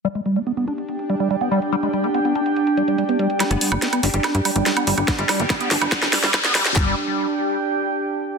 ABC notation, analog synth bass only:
X:1
M:4/4
L:1/16
Q:1/4=143
K:G
V:1 name="Analog synth bass" clef=bass
z16 | z16 | z G,,, z G,,, z2 G,,, G,,, z G,, z G,,, z2 G,,, G,,, | z G,,, z G,,, z2 G,,, G,,, z =F,,, z G,,, z2 _A,,, A,,, |
G,,,2 z12 z2 |]